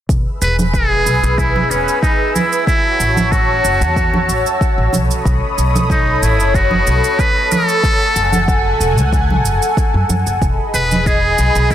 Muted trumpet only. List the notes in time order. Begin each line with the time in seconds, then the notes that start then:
0.43 B4
0.74 G#4
1.39 E4
1.71 C#4
2.02 D#4
2.35 E4
2.67 E4
3.32 F#4
5.91 D#4
6.23 E4
6.55 F#4
7.20 B4
7.52 A4
10.75 B4
11.07 G#4
11.71 E4